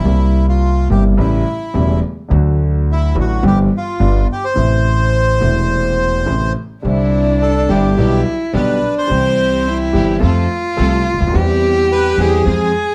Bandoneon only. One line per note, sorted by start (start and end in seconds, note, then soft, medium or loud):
0.00 0.46 E4 medium
0.49 0.88 F4 medium
0.91 1.04 G4 medium
1.20 2.00 E4 medium
2.92 3.16 E4 medium
3.20 3.44 F#4 medium
3.47 3.59 G4 medium
3.77 4.27 F4 medium
4.32 4.45 G4 medium
4.45 6.53 C5 medium
7.42 7.71 A4 medium
7.70 8.22 G4 medium
8.56 8.95 B4 medium
8.98 9.78 C5 loud
11.92 12.21 B4 loud
12.20 12.72 G#4 medium